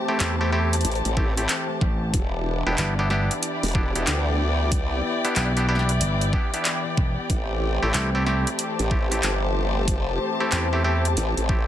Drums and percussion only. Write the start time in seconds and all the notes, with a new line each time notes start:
0.20 clap, closed hi-hat
0.73 closed hi-hat
0.81 closed hi-hat
0.85 closed hi-hat
0.92 closed hi-hat
0.95 closed hi-hat
1.05 closed hi-hat
1.17 kick
1.37 closed hi-hat
1.49 clap, closed hi-hat
1.81 kick
2.14 kick, closed hi-hat
2.78 clap, closed hi-hat
3.10 snare
3.31 closed hi-hat
3.43 closed hi-hat
3.63 closed hi-hat
3.67 closed hi-hat
3.68 closed hi-hat
3.70 closed hi-hat
3.75 kick
3.96 closed hi-hat
4.07 clap, closed hi-hat
4.72 kick, closed hi-hat
5.25 closed hi-hat
5.36 clap, closed hi-hat
5.57 closed hi-hat
5.75 snare
5.79 snare
5.89 closed hi-hat
6.01 closed hi-hat
6.21 closed hi-hat
6.33 kick
6.54 closed hi-hat
6.65 clap, closed hi-hat
6.97 kick
7.30 kick, closed hi-hat
7.94 clap, closed hi-hat
8.27 snare
8.47 closed hi-hat
8.59 closed hi-hat
8.79 closed hi-hat
8.91 kick
9.12 closed hi-hat
9.23 clap, closed hi-hat
9.88 kick, closed hi-hat
10.52 clap, closed hi-hat
11.05 closed hi-hat
11.17 closed hi-hat
11.37 closed hi-hat
11.49 kick